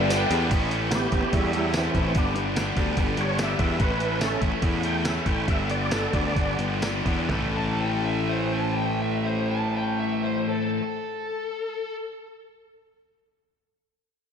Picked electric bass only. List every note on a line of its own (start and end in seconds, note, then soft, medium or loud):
0.00 0.24 G1 loud
0.31 0.49 E2 medium
0.51 1.06 A1 medium
1.12 1.22 A1 medium
1.33 1.88 E2 medium
1.94 2.13 A1 medium
2.16 2.70 G1 medium
2.77 2.95 D2 medium
2.97 3.16 G1 medium
3.18 3.55 G1 medium
3.59 3.78 E2 medium
3.80 4.35 A1 medium
4.41 4.51 A1 medium
4.62 5.19 E2 medium
5.26 5.45 A1 medium
5.48 6.07 G1 medium
6.13 6.34 D2 medium
6.36 6.57 G1 medium
6.59 7.01 G1 medium
7.06 7.27 E2 medium
7.30 10.41 A1 medium